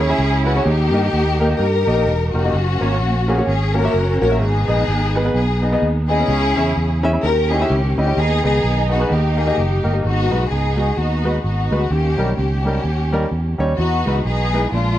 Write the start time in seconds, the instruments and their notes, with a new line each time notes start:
Already playing: fingered electric bass D#2
0.00 string section C#4 E4 G#4, grand piano C#5
0.09 grand piano C#4 E4 G#4 E5
0.19 fingered electric bass C#2
0.45 grand piano C#4 E4 G#4 B4, string section F#4
0.55 grand piano C#4 E4 G#4 C#5
0.64 fingered electric bass D#2, grand piano D#3, string section A#3 D#4 G4
0.93 fingered electric bass G2, grand piano A#3 D#4 G4 D#5
1.13 fingered electric bass D#2
1.40 grand piano A#3 D#4 G4 A#4
1.49 grand piano A#3 D#4 G4 D#5
1.58 fingered electric bass G2, string section D#4 G4 A#4
1.87 fingered electric bass A#1, grand piano A#3 D#4 G4 D#5
1.96 grand piano A#3 D#4 G4 D#5
2.06 fingered electric bass E1
2.33 fingered electric bass F1, grand piano A#3 D#4 G4 A#4, string section A#3 C#4 F#4
2.44 grand piano A#3 D#4 G4 D#5
2.53 fingered electric bass F#1
2.81 fingered electric bass G#1, grand piano A#3 C#4 F#4 C#5
3.00 fingered electric bass A#1
3.28 grand piano A#3 C#4 F#4 G#4
3.37 grand piano A#3 C#4 F#4 C#5
3.47 fingered electric bass G#1, string section C#4 G#4
3.74 grand piano A#3 C#4 F#4 C#5, string section C#4 F#4 A#4
3.84 grand piano A#3 C#4 F#4 E5
3.94 fingered electric bass F#1
4.21 fingered electric bass A#1, grand piano A#3 C#4 F#4 C#5, string section A#4
4.30 grand piano A#3 C#4 F#4 E5
4.40 fingered electric bass G#1, grand piano G#2, string section B3 D#4 G#4
4.68 fingered electric bass A#1, grand piano B3 D#4 G#4 D#5
4.88 fingered electric bass G#1
5.16 grand piano B3 D#4 G#4 B4
5.24 grand piano B3 D#4 G#4 B4
5.34 fingered electric bass B1, string section B3 D#4 G#4
5.62 grand piano B3 D#4 G#4 D#5
5.72 grand piano B3 D#4 G#4 D#5
5.82 fingered electric bass D#2
6.09 grand piano B3 D#4 G#4 D#5, string section C#4 E4 G#4
6.20 grand piano B3 D#4 G#4 D#5
6.28 fingered electric bass C#2, grand piano C#3
6.57 fingered electric bass E2, grand piano C#4 E4 G#4 E5
6.76 fingered electric bass E2
7.03 grand piano C#4 E4 G#4 E5
7.13 grand piano C#4 E4 G#4 E5
7.23 fingered electric bass D#2, grand piano D#3, string section C#4 G4 A#4
7.50 grand piano C#4 E4 G4 D#5, string section G#4
7.60 grand piano C#4 E4 G4 E5
7.70 fingered electric bass C#2, string section G4
7.97 fingered electric bass D2, grand piano C#4 E4 G4 D#5, string section G4
8.07 grand piano C#4 E4 G4 D#5
8.17 fingered electric bass D#2, grand piano D#3, string section B3 D#4 G#4
8.44 fingered electric bass C#2, grand piano B3 D#4 G#4 D#5, string section B3 D#4 G#4
8.64 fingered electric bass B1
8.90 grand piano B3 D#4 G#4 F#5, string section F#4
9.00 grand piano B3 D#4 G#4 B4
9.09 fingered electric bass D#2, grand piano D#3, string section A#3 D#4 G4
9.37 grand piano A#3 D#4 G4 D#5, string section G#4
9.46 grand piano A#3 D#4 G4 D#5
9.58 fingered electric bass F#1, string section A#3 D#4 G4
9.83 fingered electric bass G1, grand piano A#3 D#4 G4 A#4
9.93 grand piano A#3 D#4 G4 D#5
10.03 fingered electric bass G#1, grand piano G#2, string section B3 D#4 F#4
10.31 fingered electric bass B1, grand piano G#3 D#4 F#4 B4
10.51 fingered electric bass C#2, string section B3 D#4 G#4
10.77 grand piano G#3 D#4 F#4 G#4
10.97 fingered electric bass D#2, string section B3 D#4 F#4
11.24 grand piano G#3 D#4 F#4 B4
11.44 fingered electric bass G#1, string section B3 D#4 F#4
11.71 fingered electric bass D2, grand piano G#3 D#4 F#4 B4
11.90 fingered electric bass D#2, grand piano D#3, string section A#3 C#4 G4
12.18 fingered electric bass B1, grand piano G3 C#4 D#4 A#4
12.38 fingered electric bass C#2, string section A#3 C#4 G4
12.65 grand piano G3 C#4 D#4 A#4
12.84 fingered electric bass D#2
13.12 grand piano G3 C#4 D#4 A#4
13.31 fingered electric bass E2
13.58 fingered electric bass D#2, grand piano G3 C#4 D#4 C#5
13.78 fingered electric bass E2, grand piano E3, string section B3 D#4 F#4
14.06 fingered electric bass C#2, grand piano G#3 D#4 E4 B4
14.25 fingered electric bass B1, string section B3 D#4 G#4
14.53 grand piano G#3 D#4 E4 B4
14.72 fingered electric bass A#1, grand piano A#2, string section G#3 D4 F4